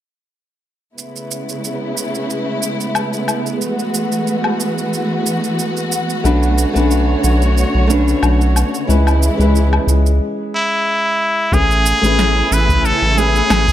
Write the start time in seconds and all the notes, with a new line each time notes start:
0.96 C#3 G#3 A3 B3 E4, shaker
1.16 shaker
1.31 shaker
1.49 shaker
1.64 shaker
1.97 shaker
2.15 shaker
2.30 shaker
2.63 shaker
2.81 shaker
2.95 low woodblock, shaker
3.13 shaker
3.28 low woodblock, shaker
3.46 shaker
3.61 E3 F#4, shaker
3.79 shaker
3.94 shaker
4.12 shaker
4.27 shaker
4.44 low woodblock
4.60 shaker
4.78 shaker
4.93 shaker
5.26 shaker
5.44 shaker
5.59 shaker
5.77 shaker
5.92 shaker
6.10 shaker
6.24 B1 D3 A3 C#4 D4 B4 C#5, shaker
6.43 shaker
6.58 shaker
6.73 B1 A3 C#4 D4, shaker
6.77 B4
6.91 shaker
7.24 B1, shaker
7.42 shaker
7.58 shaker
7.75 B1
7.87 A3 C#4 D4, shaker
7.91 B4
8.08 shaker
8.23 B1, low woodblock, shaker
8.41 shaker
8.56 low woodblock, shaker
8.75 shaker
8.87 C#2 C#3 E3 G#3 C#4 E4 B4, shaker
9.07 low woodblock, shaker
9.23 shaker
9.37 C#2 G#3 C#4 E4, shaker
9.41 B4
9.56 shaker
9.73 low woodblock
9.87 C#2, shaker
10.06 shaker
10.54 E4
11.52 A1 C#3 A3 B3 C#4 E4 G#4 B4 G#5, kick, shaker
11.71 shaker
11.86 shaker
12.01 A1 A3 C#4 G#4, shaker
12.05 B4
12.19 snare, shaker
12.51 A1 B4, shaker
12.69 kick, shaker
12.85 A4, shaker
13.02 A1
13.15 A3 C#4 G#4, shaker
13.20 B4
13.36 shaker
13.50 A1, snare, low woodblock, shaker
13.68 kick, shaker